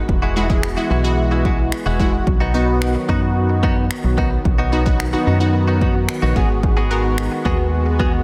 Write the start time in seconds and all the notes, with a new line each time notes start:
Already playing: G#3 B3 F#4
0.09 E1 E3, muted clean electric guitar stroke, kick
0.22 G#3 E4 F#4
0.36 G#3 E4 F#4
0.50 G#3 E4 G#4, muted clean electric guitar stroke, kick
0.63 finger snap, muted clean electric guitar stroke
0.77 G#3 E4 F#4
0.90 B1 G#3 E4 F#4
1.04 G#3 E4 F#4, muted clean electric guitar stroke
1.18 muted clean electric guitar stroke
1.31 G#3 E4 F#4
1.45 G#3 E4 F#4, kick
1.59 muted clean electric guitar stroke
1.72 finger snap, muted clean electric guitar stroke
1.86 E1 G#3 E4 F#4
2.00 G#3 E4 F#4, kick
2.13 muted clean electric guitar stroke
2.27 B1 D#3 F#3, muted clean electric guitar stroke, kick
2.40 B3 D#4 F#4
2.54 B3 D#4 F#4
2.82 finger snap
2.95 muted clean electric guitar stroke
3.09 F#2 B3 D#4 F#4, kick
3.22 muted clean electric guitar stroke
3.50 muted clean electric guitar stroke
3.63 B3 D#4 F#4, kick
3.77 muted clean electric guitar stroke
3.91 finger snap
4.04 B1, muted clean electric guitar stroke
4.18 B3 D#4 F#4, kick
4.31 muted clean electric guitar stroke
4.45 B1, muted clean electric guitar stroke, kick
4.58 B3 D#4 F#4
4.72 B3 D#4 F#4
4.86 B3 D#4 F#4, muted clean electric guitar stroke, kick
5.00 finger snap, muted clean electric guitar stroke
5.13 B3 D#4 F#4
5.27 F#2 B3 D#4 F#4
5.40 B3 D#4 F#4, muted clean electric guitar stroke
5.54 muted clean electric guitar stroke
5.68 B3 D#4 F#4
5.81 B3 D#4 F#4, kick
5.95 muted clean electric guitar stroke
6.09 finger snap, muted clean electric guitar stroke
6.22 A#1 B3 D#4 F#4
6.36 G#1 G#3 B3 F#4 G#4, kick
6.50 muted clean electric guitar stroke
6.63 muted clean electric guitar stroke, kick
6.77 B3 F#4 G#4
6.90 B3 F#4 G#4 A#4
7.04 muted clean electric guitar stroke
7.18 finger snap
7.32 muted clean electric guitar stroke
7.45 D#2 B3 F#4 G#4, kick
7.59 muted clean electric guitar stroke
7.86 muted clean electric guitar stroke
8.00 B3 F#4 G#4, kick
8.13 muted clean electric guitar stroke